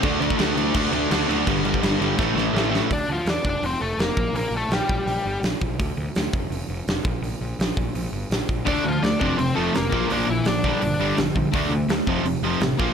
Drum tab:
CC |x-x-x-x-x-x-x-x-|x-x-x-x---------|----------------|----------------|
HH |----------------|----------------|o---o---o---o---|o---o---o---o---|
SD |----o-------o---|----o---o-o-o-o-|----o-------o---|----o-------o---|
BD |o--o----o-------|o--o----o-------|o-----o-------o-|------o-------o-|

CC |----------------|----------------|----------------|----------------|
HH |o---o---o---o---|o---o---o---o---|o---o---o---o---|o---o---o---o---|
SD |----o-------o---|----o-------o---|----o-------o---|----o-------o---|
BD |o-----o-------o-|------o-------o-|o-----o-------o-|------o-------o-|

CC |----------------|
HH |o---o---o---o---|
SD |----o-------o---|
BD |o-----o-------o-|